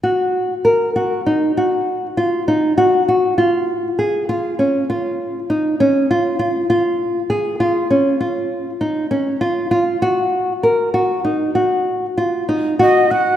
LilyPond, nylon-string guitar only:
\new Staff \with { instrumentName = "Nylon-string guitar" } { \time 11/8 \key ees \minor \tempo 4 = 99 ges'4 bes'8 ges'8 ees'8 ges'4 f'8 ees'8 ges'8 ges'8 | f'4 aes'8 f'8 des'8 f'4 ees'8 des'8 f'8 f'8 | f'4 aes'8 f'8 des'8 f'4 ees'8 des'8 f'8 f'8 | ges'4 bes'8 ges'8 ees'8 ges'4 f'8 ees'8 ges'8 ges'8 | }